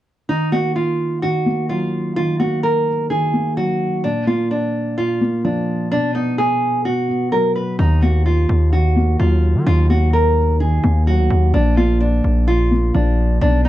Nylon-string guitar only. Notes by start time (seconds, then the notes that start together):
0.29 D#4
0.52 F#4
0.76 F4
1.22 F#4
1.69 F4
2.16 F4
2.40 F#4
2.63 A#4
3.10 G#4
3.57 F#4
4.04 D4
4.27 F4
4.51 D4
4.98 F4
5.45 D4
5.92 D4
6.15 D#4
6.38 G#4
6.85 F#4
7.32 A#4
7.55 B4
7.79 D#4
8.02 F#4
8.26 F4
8.73 F#4
9.20 F4
9.67 F4
9.90 F#4
10.13 A#4
10.60 G#4
11.07 F#4
11.54 D4
11.77 F4
12.00 D4
12.48 F4
12.94 D4
13.41 D4
13.65 D#4